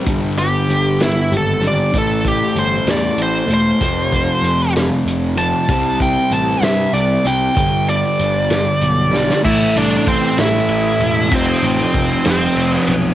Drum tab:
CC |------------|------------|------------|------------|
RD |------------|------------|------------|------------|
HH |x-x-x-x-x-x-|x-x-x-x-x-x-|x-x-x-x-x-x-|x-x-x-x-x-x-|
SD |------o-----|------o-----|------o-----|------o-----|
BD |o-----------|o-o---------|o-o---------|o-o---------|

CC |------------|x-----------|------------|
RD |------------|--x-x-x-x-x-|x-x-x-x-x-x-|
HH |x-x-x-x-x---|------------|------------|
SD |------o---oo|------o-----|------o-----|
BD |o-----------|o---o-------|o---o-------|